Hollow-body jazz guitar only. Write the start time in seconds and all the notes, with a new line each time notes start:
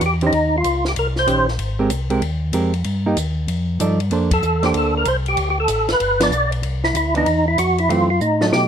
0.22 D#3 C#4 G4 C5
1.27 D#3 C#4 G4 C5
1.79 G#3 C4 G4 A#4
2.10 G#3 C4 G4 A#4
2.53 G#3 C4 G4 A#4
3.06 A#3 D#4 G4
3.80 F3 D#4 A4 D5
4.12 A#3 D4 A4 C5
4.63 A#3 D4 A4 C5
6.20 F3 B3 D4
7.15 E3 B3 D4
7.89 E3 A3 C4
8.41 F#3 A3 D#4